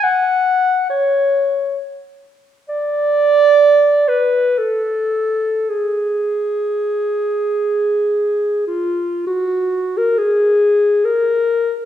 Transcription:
0.04 0.89 F#5 loud
0.90 1.78 C#5 medium
2.69 4.10 D5 loud
4.09 4.60 B4 medium
4.58 5.71 A4 medium
5.69 8.67 G#4 medium
8.67 9.22 F4 medium
9.27 9.99 F#4 medium
9.98 10.19 A#4 medium
10.18 11.06 G#4 medium
11.05 11.77 A#4 loud

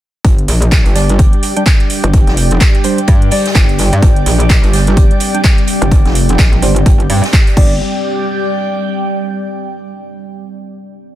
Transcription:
0.25 0.47 G1 loud
0.25 7.53 G3 medium
0.25 3.99 D4 medium
0.25 7.56 G4 medium
0.25 7.53 D5 medium
0.25 kick loud
0.25 closed hi-hat medium
0.25 closed hi-hat loud
0.38 7.57 D5 medium
0.38 closed hi-hat soft
0.47 0.83 A#1 loud
0.47 7.57 G5 medium
0.47 snare soft
0.47 closed hi-hat medium
0.47 open hi-hat loud
0.62 closed hi-hat medium
0.72 kick loud
0.72 snare loud
0.72 clap loud
0.72 closed hi-hat medium
0.86 1.31 G1 medium
0.86 closed hi-hat soft
0.95 1.53 G3 medium
0.95 1.53 D4 medium
0.95 1.53 D5 medium
0.95 snare medium
0.95 closed hi-hat medium
0.95 open hi-hat medium
1.09 closed hi-hat medium
1.19 kick loud
1.19 closed hi-hat medium
1.33 closed hi-hat soft
1.43 closed hi-hat medium
1.43 open hi-hat loud
1.56 1.63 G3 loud
1.56 1.63 D4 medium
1.56 1.63 G5 loud
1.56 closed hi-hat medium
1.66 kick loud
1.66 snare loud
1.66 clap loud
1.66 closed hi-hat medium
1.80 closed hi-hat soft
1.90 closed hi-hat medium
1.90 open hi-hat medium
2.04 2.25 G1 loud
2.04 closed hi-hat medium
2.13 kick loud
2.13 closed hi-hat loud
2.13 closed hi-hat medium
2.27 2.59 F1 medium
2.27 snare soft
2.27 closed hi-hat soft
2.37 closed hi-hat medium
2.37 open hi-hat loud
2.51 closed hi-hat medium
2.61 kick loud
2.61 snare loud
2.61 clap loud
2.61 closed hi-hat medium
2.75 closed hi-hat soft
2.84 2.99 G3 medium
2.84 2.99 D4 medium
2.84 2.99 C5 medium
2.84 closed hi-hat medium
2.84 open hi-hat loud
2.98 closed hi-hat medium
3.07 3.30 G2 loud
3.07 kick loud
3.07 closed hi-hat loud
3.07 closed hi-hat medium
3.22 closed hi-hat soft
3.31 3.46 G3 medium
3.31 3.46 D4 medium
3.31 3.46 D5 medium
3.31 open hi-hat medium
3.31 open hi-hat loud
3.46 snare medium
3.46 closed hi-hat medium
3.55 3.91 G1 loud
3.55 kick loud
3.55 snare loud
3.55 clap loud
3.55 closed hi-hat medium
3.68 closed hi-hat soft
3.78 snare soft
3.78 closed hi-hat medium
3.78 open hi-hat loud
3.93 4.01 G2 loud
3.93 closed hi-hat medium
4.03 4.25 G1 loud
4.03 7.53 C4 medium
4.03 kick loud
4.03 closed hi-hat medium
4.16 closed hi-hat soft
4.26 4.61 A#1 loud
4.26 snare soft
4.26 closed hi-hat medium
4.26 open hi-hat loud
4.40 closed hi-hat medium
4.50 kick loud
4.50 snare loud
4.50 clap loud
4.50 closed hi-hat medium
4.63 5.09 G1 loud
4.63 closed hi-hat soft
4.73 5.31 G3 medium
4.73 5.31 D4 medium
4.73 5.31 D5 medium
4.73 snare medium
4.73 closed hi-hat medium
4.73 open hi-hat loud
4.87 closed hi-hat medium
4.97 kick loud
4.97 closed hi-hat medium
5.11 closed hi-hat soft
5.20 closed hi-hat medium
5.20 open hi-hat loud
5.34 5.41 G3 medium
5.34 5.41 D4 medium
5.34 5.41 G5 loud
5.34 closed hi-hat medium
5.44 kick loud
5.44 snare loud
5.44 clap loud
5.44 closed hi-hat medium
5.58 closed hi-hat soft
5.67 closed hi-hat medium
5.67 open hi-hat loud
5.82 6.03 G1 loud
5.82 closed hi-hat medium
5.91 kick loud
5.91 closed hi-hat medium
6.05 6.37 F1 loud
6.05 snare soft
6.05 closed hi-hat soft
6.15 closed hi-hat medium
6.15 open hi-hat loud
6.29 closed hi-hat medium
6.39 6.61 A#1 medium
6.39 kick loud
6.39 snare loud
6.39 clap loud
6.39 closed hi-hat medium
6.53 closed hi-hat soft
6.62 6.84 G1 loud
6.62 6.77 G3 medium
6.62 6.77 D4 medium
6.62 6.77 C5 medium
6.62 closed hi-hat medium
6.62 open hi-hat loud
6.76 closed hi-hat medium
6.86 7.08 G1 loud
6.86 kick loud
6.86 closed hi-hat medium
7.00 closed hi-hat soft
7.10 7.21 G2 loud
7.10 7.24 G3 medium
7.10 7.24 D4 medium
7.10 7.24 D5 medium
7.10 open hi-hat loud
7.10 open hi-hat medium
7.24 snare soft
7.24 closed hi-hat medium
7.33 kick loud
7.33 snare loud
7.33 clap loud
7.33 closed hi-hat medium
7.47 closed hi-hat soft
7.57 7.79 G1 loud
7.57 7.75 G3 medium
7.57 7.75 D4 medium
7.57 9.42 G4 medium
7.57 7.75 D5 loud
7.57 kick loud
7.57 crash medium
7.66 9.42 D5 medium
7.96 9.66 G5 medium

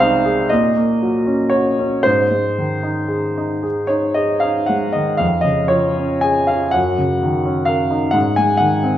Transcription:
0.00 0.46 C2 medium
0.00 0.53 C3 soft
0.00 0.53 G#3 medium
0.00 0.16 C4 medium
0.00 0.41 D#4 soft
0.00 0.52 C5 medium
0.00 0.50 F5 medium
0.25 0.51 G#4 soft
0.49 2.03 A#2 medium
0.49 1.54 D#5 medium
0.76 1.18 A#3 soft
1.02 1.44 F#3 soft
1.26 1.69 C#4 soft
1.50 1.95 F#4 soft
1.50 2.04 C#5 medium
1.79 2.06 C#4 soft
2.03 5.19 G#2 medium
2.03 3.89 C5 medium
2.31 2.74 G#3 soft
2.58 3.01 D#3 soft
2.83 3.26 D#4 soft
3.08 3.52 G#4 soft
3.38 3.80 D#4 soft
3.63 4.06 G#4 soft
3.87 4.33 D#4 soft
3.87 4.16 C#5 medium
4.14 4.60 G#4 soft
4.14 4.43 D#5 medium
4.40 4.87 D#4 soft
4.40 4.69 F5 medium
4.66 5.12 G#3 soft
4.66 4.95 F#5 medium
4.93 5.22 D#3 soft
4.93 5.21 D#5 medium
5.17 6.68 F2 soft
5.17 5.45 F5 medium
5.41 5.86 C#3 soft
5.41 5.70 D#5 medium
5.68 6.12 F3 soft
5.68 6.21 C#5 medium
5.98 6.39 C#4 soft
6.21 6.64 G#4 soft
6.21 6.48 G#5 medium
6.47 6.75 F4 soft
6.47 6.73 F5 medium
6.71 8.11 F#2 medium
6.71 7.67 F#5 medium
6.98 7.36 C#3 soft
7.23 7.59 D#3 soft
7.45 7.82 C#4 soft
7.65 8.05 A#4 soft
7.65 8.13 F5 medium
7.91 8.14 D#4 soft
8.11 8.98 G#2 medium
8.11 8.36 F#5 medium
8.36 8.75 G#3 soft
8.36 8.60 G#5 medium
8.57 8.97 D#3 soft
8.57 8.98 F#5 medium
8.84 8.98 C4 soft

